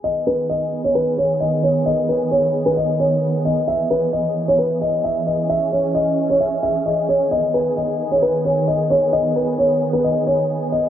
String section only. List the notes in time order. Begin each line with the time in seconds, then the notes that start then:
0.04 D#3 B3 G#4
3.68 E3 G#4
5.50 C#4
7.31 D#3 B3